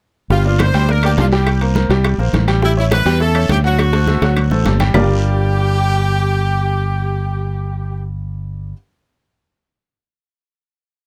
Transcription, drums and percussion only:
0.30 high bongo medium
0.30 high conga soft
0.30 long guiro medium
0.45 high conga soft
0.59 high bongo medium
0.59 high conga medium
0.59 high timbale medium
0.59 short guiro medium
0.59 claves medium
0.74 high bongo soft
0.74 high timbale medium
0.74 short guiro medium
0.88 high bongo medium
0.88 high conga soft
0.88 long guiro medium
1.03 high bongo soft
1.03 high conga soft
1.03 high timbale medium
1.03 claves medium
1.17 high bongo soft
1.17 low bongo medium
1.17 high conga medium
1.17 high timbale medium
1.17 low timbale medium
1.17 short guiro medium
1.32 high bongo soft
1.32 high conga soft
1.32 short guiro medium
1.46 high bongo medium
1.46 high conga soft
1.46 high timbale medium
1.46 long guiro medium
1.46 claves medium
1.61 high conga soft
1.61 high timbale medium
1.75 high bongo medium
1.75 high conga medium
1.75 short guiro medium
1.90 high bongo soft
1.90 high conga soft
1.90 high timbale medium
1.90 short guiro medium
2.04 high bongo medium
2.04 high conga soft
2.04 high timbale medium
2.04 long guiro medium
2.04 claves medium
2.19 high bongo soft
2.19 high conga soft
2.33 high bongo soft
2.33 low bongo medium
2.33 high conga medium
2.33 high timbale medium
2.33 short guiro medium
2.48 high bongo soft
2.48 high timbale medium
2.48 short guiro medium
2.48 claves medium
2.62 high bongo medium
2.62 high conga soft
2.62 long guiro medium
2.77 high conga soft
2.91 high bongo medium
2.91 high conga loud
2.91 high timbale medium
2.91 short guiro medium
2.91 claves medium
3.06 high bongo soft
3.06 high timbale medium
3.06 short guiro medium
3.20 high bongo medium
3.20 high conga soft
3.20 long guiro medium
3.35 high bongo soft
3.35 high conga soft
3.35 high timbale medium
3.35 claves medium
3.49 high bongo soft
3.49 low bongo medium
3.49 high conga medium
3.49 high timbale medium
3.49 short guiro medium
3.64 high bongo soft
3.64 high conga soft
3.64 short guiro medium
3.78 high bongo medium
3.78 high conga soft
3.78 high timbale medium
3.78 long guiro medium
3.78 claves medium
3.93 high bongo loud
3.93 high conga soft
3.93 high timbale medium
4.07 high bongo medium
4.07 high conga medium
4.07 short guiro medium
4.22 high bongo medium
4.22 high conga soft
4.22 high timbale medium
4.22 short guiro medium
4.36 low bongo medium
4.36 high conga soft
4.36 high timbale medium
4.36 long guiro medium
4.36 claves medium
4.51 low bongo medium
4.51 high conga soft
4.65 low bongo medium
4.65 high conga medium
4.65 high timbale medium
4.65 low timbale medium
4.65 short guiro medium
4.80 low bongo medium
4.80 high conga medium
4.80 high timbale medium
4.80 short guiro medium
4.80 claves medium
4.94 low bongo loud
4.94 low conga medium
4.94 low timbale medium
4.94 long guiro medium
4.94 claves medium

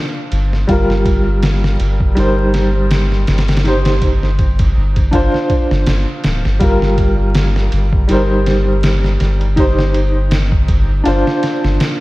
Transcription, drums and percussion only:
0.32 ride medium
0.53 snare soft
0.69 kick loud
0.69 ride medium
0.90 snare soft
1.06 kick medium
1.06 ride medium
1.43 snare loud
1.43 ride medium
1.64 snare medium
1.80 ride medium
2.00 kick medium
2.17 ride medium
2.54 snare medium
2.54 ride medium
2.91 snare loud
2.91 ride medium
3.12 snare soft
3.27 snare medium
3.27 ride medium
3.38 snare medium
3.38 ride medium
3.48 snare medium
3.48 ride medium
3.57 snare medium
3.57 ride medium
3.65 snare soft
3.65 ride medium
3.85 snare medium
3.85 ride medium
4.02 kick medium
4.02 ride medium
4.23 snare soft
4.39 kick medium
4.39 ride medium
4.59 kick loud
4.59 ride medium
4.96 kick medium
4.96 ride medium
5.13 kick loud
5.13 ride medium
5.34 snare soft
5.50 kick medium
5.50 ride medium
5.71 snare soft
5.86 snare loud
5.86 ride medium
6.24 snare loud
6.24 ride medium
6.45 snare soft
6.60 kick loud
6.60 ride medium
6.82 snare soft
6.98 kick medium
6.98 ride medium
7.35 snare loud
7.35 ride medium
7.56 snare medium
7.72 ride medium
7.93 kick loud
8.09 ride medium
8.46 snare medium
8.46 ride medium
8.83 snare loud
8.83 ride medium
9.04 snare soft
9.20 snare soft
9.20 ride medium
9.41 ride soft
9.57 kick loud
9.57 ride medium
9.79 snare soft
9.94 ride medium
10.31 snare loud
10.31 ride medium
10.52 kick loud
10.68 kick loud
10.68 ride medium
11.05 ride medium
11.27 snare soft
11.43 snare soft
11.43 ride medium
11.64 snare soft
11.80 snare loud
11.80 ride medium

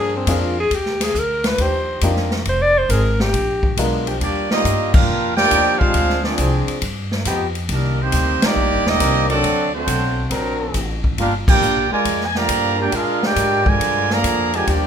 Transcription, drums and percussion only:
0.27 kick soft
0.27 hi-hat pedal medium
0.27 ride medium
0.71 kick soft
0.71 ride medium
0.86 snare soft
1.00 snare medium
1.00 ride medium
1.15 kick soft
1.15 hi-hat pedal medium
1.44 snare medium
1.44 ride medium
1.58 kick soft
1.58 ride medium
2.01 kick soft
2.01 hi-hat pedal medium
2.01 ride medium
2.16 snare soft
2.31 snare medium
2.45 kick soft
2.45 ride medium
2.89 kick soft
2.89 hi-hat pedal medium
2.89 ride medium
3.20 snare medium
3.33 kick soft
3.33 ride medium
3.63 kick medium
3.77 kick soft
3.77 hi-hat pedal medium
3.77 ride medium
4.07 ride medium
4.21 kick soft
4.21 ride medium
4.51 snare medium
4.65 kick soft
4.65 hi-hat pedal medium
4.65 ride medium
4.94 kick loud
4.94 crash medium
5.37 snare medium
5.51 kick soft
5.51 hi-hat pedal medium
5.51 ride medium
5.81 kick medium
5.94 kick soft
5.94 ride medium
6.09 snare soft
6.24 snare medium
6.38 kick soft
6.38 hi-hat pedal medium
6.38 ride medium
6.68 ride medium
6.82 kick soft
6.82 ride medium
7.11 snare medium
7.25 kick soft
7.25 hi-hat pedal medium
7.25 ride medium
7.55 ride medium
7.69 kick soft
7.69 ride medium
8.12 kick soft
8.12 hi-hat pedal medium
8.12 ride medium
8.42 snare loud
8.42 ride medium
8.86 snare medium
9.00 kick soft
9.00 hi-hat pedal medium
9.00 ride medium
9.30 ride medium
9.44 kick soft
9.44 ride medium
9.87 kick soft
9.87 hi-hat pedal medium
9.87 ride medium
10.31 kick soft
10.31 ride medium
10.74 kick soft
10.74 hi-hat pedal medium
10.74 ride medium
11.04 kick medium
11.18 kick soft
11.18 ride medium
11.48 kick loud
11.48 crash medium
11.62 hi-hat pedal medium
12.05 kick soft
12.05 ride medium
12.21 snare soft
12.35 snare medium
12.49 kick soft
12.49 hi-hat pedal medium
12.49 ride loud
12.92 kick soft
12.92 ride medium
13.23 snare medium
13.36 kick soft
13.36 hi-hat pedal medium
13.36 ride medium
13.66 kick medium
13.80 kick soft
13.80 ride medium
14.10 snare medium
14.24 kick soft
14.24 hi-hat pedal medium
14.24 ride medium
14.53 ride medium
14.67 kick soft
14.67 ride medium

